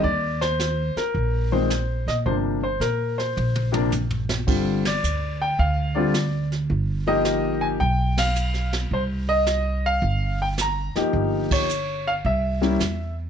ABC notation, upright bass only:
X:1
M:4/4
L:1/8
Q:"Swing" 1/4=108
K:Gphr
V:1 name="Upright bass" clef=bass
E,,3 z B,,,3 B,, | G,,,2 B,,2 B,,,4 | G,,,2 D,,2 D,,4 | G,,,4 =B,,,4 |
C,,4 G,,,3 z | G,,,4 C,,2 =E,,2 |]